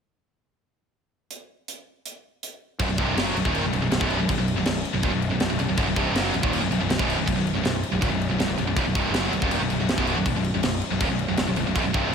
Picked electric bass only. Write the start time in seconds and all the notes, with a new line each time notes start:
2.79 B0
2.89 B0
2.98 C1
3.16 F#1
3.35 B0
3.45 D#1
3.63 B0
3.73 B0
3.82 B0
3.91 B0
4.01 B0
4.19 B0
4.29 B0
4.37 B0
4.56 B0
4.66 B0
4.94 B0
5.03 D#1
5.14 B0
5.32 B0
5.41 B0
5.50 B0
5.59 B0
5.68 B0
5.78 B0
5.87 B0
5.96 C1
6.14 F#1
6.33 B0
6.43 D#1
6.62 B0
6.71 B0
6.80 B0
6.90 B0
6.99 B0
7.18 B0
7.27 B0
7.37 B0
7.55 B0
7.64 B0
7.93 B0
8.02 D#1
8.10 B0
8.30 B0
8.39 B0
8.48 B0
8.57 B0
8.66 B0
8.76 B0
8.85 B0
8.95 C1
9.12 F#1
9.31 B0
9.42 D#1
9.60 B0
9.69 B0
9.78 B0
9.88 B0
9.97 B0
10.16 B0
10.26 B0
10.34 B0
10.54 B0
10.63 B0
10.91 B0
11.01 D#1
11.10 B0
11.29 B0
11.39 B0
11.48 B0
11.57 B0
11.66 B0
11.75 B0
11.86 B0
11.94 C1